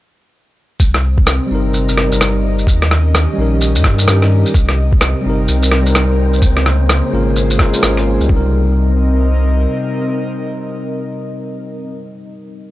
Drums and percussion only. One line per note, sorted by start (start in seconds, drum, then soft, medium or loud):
0.80 kick loud
0.80 shaker medium
0.94 cross-stick medium
1.18 kick loud
1.27 cross-stick loud
1.27 shaker medium
1.74 shaker medium
1.89 shaker medium
1.98 cross-stick medium
2.12 shaker medium
2.21 cross-stick loud
2.21 shaker medium
2.59 shaker soft
2.67 kick loud
2.67 shaker medium
2.82 cross-stick medium
2.91 cross-stick medium
3.15 cross-stick loud
3.15 shaker medium
3.61 shaker medium
3.75 shaker medium
3.84 kick loud
3.84 cross-stick medium
3.99 shaker medium
4.08 cross-stick loud
4.08 shaker medium
4.22 cross-stick soft
4.46 shaker soft
4.54 kick loud
4.54 shaker medium
4.69 cross-stick soft
4.92 kick loud
5.01 cross-stick loud
5.01 shaker medium
5.48 shaker medium
5.63 shaker medium
5.72 cross-stick medium
5.86 shaker medium
5.95 cross-stick loud
5.95 shaker medium
6.33 shaker soft
6.42 kick loud
6.42 shaker medium
6.57 cross-stick soft
6.66 cross-stick medium
6.89 cross-stick loud
6.89 shaker medium
7.36 shaker medium
7.50 shaker medium
7.59 kick loud
7.59 cross-stick medium
7.74 shaker medium
7.83 cross-stick loud
7.83 shaker medium
7.97 cross-stick soft
8.21 shaker soft
8.29 kick loud